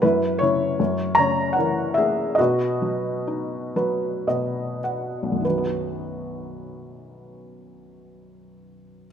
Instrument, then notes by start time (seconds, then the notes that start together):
felt piano
0.02 F#2 E4 B4
0.39 C#3 E4 C#5
0.80 F#2
1.15 C#3 C#5 A#5
1.53 A#4 F#5
1.58 E3
1.94 G#4 E5
1.98 A#3
2.35 F#4 D#5
2.39 B2
2.82 F#3
3.27 D#4
3.76 F#3 B4
4.27 B2 D#5
4.84 F#5
5.23 B1
5.32 F#2
5.40 D#3
5.45 B4
5.49 F#3
5.58 B3
5.67 F#4